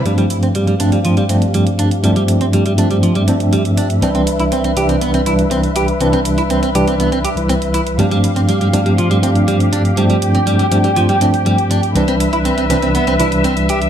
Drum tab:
HH |xxxxxxxxxxxxxxxx|xxxxxxxxxxxxxxxx|xxxxxxxxxxxxxxxx|xxxxxxxxxxxxxxxx|

HH |xxxxxxxxxxxxxxxx|xxxxxxxxxxxxxxxx|xxxxxxxxxxxxxxxx|